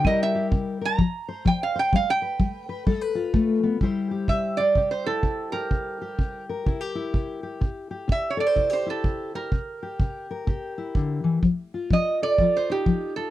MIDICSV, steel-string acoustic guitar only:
0, 0, Header, 1, 2, 480
1, 0, Start_track
1, 0, Tempo, 470958
1, 54, Time_signature, 4, 2, 24, 8
1, 5334, Tempo, 476948
1, 13454, End_track
2, 0, Start_track
2, 0, Title_t, "Steel-string acoustic guitar"
2, 0, Program_c, 0, 25
2, 43, Note_on_c, 0, 48, 80
2, 51, Note_on_c, 0, 55, 65
2, 58, Note_on_c, 0, 64, 60
2, 66, Note_on_c, 0, 67, 62
2, 70, Note_on_c, 0, 70, 70
2, 345, Note_off_c, 0, 67, 0
2, 357, Note_on_c, 0, 67, 57
2, 490, Note_off_c, 0, 48, 0
2, 524, Note_on_c, 0, 48, 79
2, 817, Note_off_c, 0, 70, 0
2, 830, Note_on_c, 0, 70, 68
2, 970, Note_off_c, 0, 48, 0
2, 988, Note_off_c, 0, 70, 0
2, 990, Note_off_c, 0, 64, 0
2, 990, Note_off_c, 0, 67, 0
2, 1000, Note_on_c, 0, 53, 77
2, 1008, Note_off_c, 0, 55, 0
2, 1310, Note_on_c, 0, 72, 64
2, 1447, Note_off_c, 0, 53, 0
2, 1476, Note_on_c, 0, 53, 69
2, 1776, Note_off_c, 0, 72, 0
2, 1788, Note_on_c, 0, 72, 70
2, 1924, Note_off_c, 0, 53, 0
2, 1946, Note_off_c, 0, 72, 0
2, 1966, Note_on_c, 0, 55, 81
2, 2262, Note_on_c, 0, 71, 65
2, 2409, Note_off_c, 0, 55, 0
2, 2441, Note_on_c, 0, 55, 80
2, 2729, Note_off_c, 0, 71, 0
2, 2741, Note_on_c, 0, 71, 72
2, 2887, Note_off_c, 0, 55, 0
2, 2921, Note_off_c, 0, 71, 0
2, 2921, Note_on_c, 0, 55, 78
2, 2924, Note_on_c, 0, 69, 72
2, 3071, Note_off_c, 0, 69, 0
2, 3071, Note_on_c, 0, 71, 59
2, 3211, Note_on_c, 0, 65, 60
2, 3367, Note_off_c, 0, 55, 0
2, 3399, Note_on_c, 0, 57, 70
2, 3700, Note_off_c, 0, 57, 0
2, 3704, Note_on_c, 0, 59, 73
2, 3857, Note_off_c, 0, 65, 0
2, 3882, Note_on_c, 0, 48, 72
2, 3884, Note_off_c, 0, 71, 0
2, 3885, Note_off_c, 0, 59, 0
2, 3890, Note_on_c, 0, 55, 61
2, 3898, Note_on_c, 0, 64, 55
2, 3905, Note_on_c, 0, 67, 58
2, 3914, Note_on_c, 0, 72, 62
2, 4186, Note_off_c, 0, 67, 0
2, 4190, Note_on_c, 0, 67, 50
2, 4329, Note_off_c, 0, 48, 0
2, 4367, Note_on_c, 0, 48, 64
2, 4682, Note_off_c, 0, 72, 0
2, 4686, Note_on_c, 0, 72, 58
2, 4813, Note_off_c, 0, 48, 0
2, 4851, Note_on_c, 0, 48, 68
2, 4856, Note_off_c, 0, 67, 0
2, 4860, Note_on_c, 0, 67, 53
2, 5163, Note_off_c, 0, 64, 0
2, 5167, Note_on_c, 0, 64, 51
2, 5297, Note_off_c, 0, 48, 0
2, 5330, Note_on_c, 0, 48, 65
2, 5628, Note_off_c, 0, 67, 0
2, 5632, Note_on_c, 0, 67, 57
2, 5773, Note_off_c, 0, 48, 0
2, 5812, Note_on_c, 0, 48, 65
2, 6116, Note_off_c, 0, 67, 0
2, 6120, Note_on_c, 0, 67, 55
2, 6253, Note_off_c, 0, 48, 0
2, 6292, Note_on_c, 0, 48, 67
2, 6598, Note_off_c, 0, 72, 0
2, 6602, Note_on_c, 0, 70, 59
2, 6633, Note_off_c, 0, 64, 0
2, 6733, Note_off_c, 0, 48, 0
2, 6770, Note_off_c, 0, 67, 0
2, 6772, Note_on_c, 0, 48, 69
2, 6774, Note_on_c, 0, 64, 56
2, 6916, Note_off_c, 0, 64, 0
2, 6916, Note_on_c, 0, 67, 53
2, 7064, Note_on_c, 0, 64, 52
2, 7213, Note_off_c, 0, 48, 0
2, 7248, Note_on_c, 0, 48, 65
2, 7532, Note_off_c, 0, 67, 0
2, 7544, Note_on_c, 0, 67, 55
2, 7691, Note_off_c, 0, 48, 0
2, 7724, Note_on_c, 0, 48, 69
2, 7729, Note_off_c, 0, 55, 0
2, 7754, Note_off_c, 0, 70, 0
2, 8020, Note_off_c, 0, 67, 0
2, 8024, Note_on_c, 0, 67, 55
2, 8169, Note_off_c, 0, 48, 0
2, 8196, Note_on_c, 0, 48, 72
2, 8491, Note_on_c, 0, 69, 62
2, 8587, Note_off_c, 0, 69, 0
2, 8587, Note_on_c, 0, 72, 57
2, 8645, Note_off_c, 0, 48, 0
2, 8675, Note_off_c, 0, 67, 0
2, 8676, Note_on_c, 0, 48, 67
2, 8679, Note_off_c, 0, 64, 0
2, 8679, Note_on_c, 0, 64, 59
2, 8819, Note_off_c, 0, 64, 0
2, 8819, Note_on_c, 0, 67, 51
2, 8988, Note_on_c, 0, 64, 52
2, 9126, Note_off_c, 0, 48, 0
2, 9163, Note_on_c, 0, 48, 66
2, 9458, Note_off_c, 0, 67, 0
2, 9476, Note_on_c, 0, 67, 60
2, 9609, Note_off_c, 0, 48, 0
2, 9626, Note_off_c, 0, 64, 0
2, 9630, Note_off_c, 0, 67, 0
2, 9642, Note_off_c, 0, 72, 0
2, 9646, Note_on_c, 0, 48, 69
2, 9956, Note_on_c, 0, 67, 50
2, 10091, Note_off_c, 0, 48, 0
2, 10131, Note_on_c, 0, 48, 73
2, 10439, Note_on_c, 0, 70, 65
2, 10574, Note_off_c, 0, 48, 0
2, 10599, Note_off_c, 0, 67, 0
2, 10602, Note_on_c, 0, 48, 68
2, 10611, Note_on_c, 0, 67, 57
2, 10914, Note_on_c, 0, 64, 52
2, 11050, Note_off_c, 0, 48, 0
2, 11096, Note_on_c, 0, 50, 55
2, 11374, Note_off_c, 0, 50, 0
2, 11378, Note_on_c, 0, 52, 59
2, 11550, Note_off_c, 0, 67, 0
2, 11551, Note_off_c, 0, 64, 0
2, 11554, Note_off_c, 0, 70, 0
2, 11562, Note_off_c, 0, 52, 0
2, 11566, Note_on_c, 0, 53, 72
2, 11882, Note_on_c, 0, 65, 53
2, 12013, Note_off_c, 0, 53, 0
2, 12051, Note_on_c, 0, 53, 71
2, 12368, Note_on_c, 0, 69, 59
2, 12496, Note_off_c, 0, 53, 0
2, 12544, Note_on_c, 0, 53, 67
2, 12545, Note_off_c, 0, 65, 0
2, 12549, Note_on_c, 0, 65, 61
2, 12846, Note_on_c, 0, 63, 54
2, 12983, Note_off_c, 0, 53, 0
2, 13011, Note_on_c, 0, 53, 69
2, 13320, Note_off_c, 0, 65, 0
2, 13324, Note_on_c, 0, 65, 55
2, 13454, Note_off_c, 0, 53, 0
2, 13454, Note_off_c, 0, 63, 0
2, 13454, Note_off_c, 0, 65, 0
2, 13454, Note_off_c, 0, 69, 0
2, 13454, End_track
0, 0, End_of_file